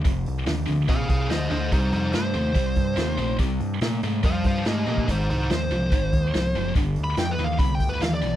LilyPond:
<<
  \new Staff \with { instrumentName = "Lead electric guitar" } { \time 4/4 \key c \minor \tempo 4 = 143 r2 <aes' f''>8 <aes' f''>8 <c'' ees''>8 <c'' ees''>8 | <ees' c''>8 <ees' c''>8 c''2. | r2 <c'' f''>8 <c'' f''>8 <g' ees''>8 <g' ees''>8 | <ees' c''>8 <ees' c''>8 c''2. |
\tuplet 3/2 { r4 b''8 g''8 b'8 f''8 b''8 g''8 b'8 f''8 d''4 } | }
  \new Staff \with { instrumentName = "Distorted electric guitar" } { \clef bass \time 4/4 \key c \minor <f, c>4 <f, d>8 <f, d>8 <f, c>4 <f, d>8 <f, d>8 | <c g>4 <c a>8 <c a>8 <c g>4 <c a>8 <c a>8 | <c g>4 <c a>8 <c a>8 <c g>4 <c a>8 <c a>8 | <aes, ees>4 <aes, f>8 <aes, f>8 <aes, ees>4 <aes, f>8 <aes, f>8 |
<g, d>4 <g, e>8 <g, e>8 <g, d>4 <g, e>8 <g, e>8 | }
  \new Staff \with { instrumentName = "Picked electric bass" } { \clef bass \time 4/4 \key c \minor f,,8 c,8 ees,8 d,8 bes,,8 c,8 d,8 d,8 | c,8 f,8 g,8 ees,8 c,8 g,8 ees,8 bes,,8 | c,8 g,8 bes,8 aes,8 f,8 g,8 aes,8 bes,8 | aes,,8 c,8 ees,8 c,8 aes,,8 ees,8 c,8 fis,,8 |
g,,8 d,8 f,8 ees,8 c,8 d,8 ees,8 b,,8 | }
  \new DrumStaff \with { instrumentName = "Drums" } \drummode { \time 4/4 <hho bd>8 hho8 <hho sn>8 hho8 <hho bd>8 <hho bd>8 <hho sn>8 hho8 | <hho bd>8 hho8 <hho sn>8 hho8 <hho bd>8 <hho bd>8 <hho sn>8 hho8 | <hho bd>8 hho8 <hho sn>8 hho8 <hho bd>8 <hho bd>8 <hho sn>8 tommh16 bd16 | <hho bd>8 hho8 <hho sn>8 hho8 <hho bd>8 <hho bd>8 <hho sn>8 hho8 |
<hho bd>8 hho8 <hho sn>8 hho8 <hho bd>8 <hho bd>8 <hho sn>8 hho8 | }
>>